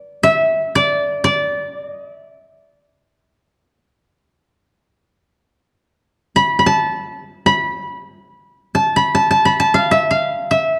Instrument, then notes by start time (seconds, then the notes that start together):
koto
Already playing: D5
0.23 E5
0.75 D5
1.24 D5
1.77 D#5
2.11 E5
6.36 B5
6.59 B5
6.66 A5
7.46 B5
8.75 A5
8.96 B5
9.15 A5
9.31 A5
9.45 B5
9.60 A5
9.74 F5
9.91 E5
10.11 F5
10.51 E5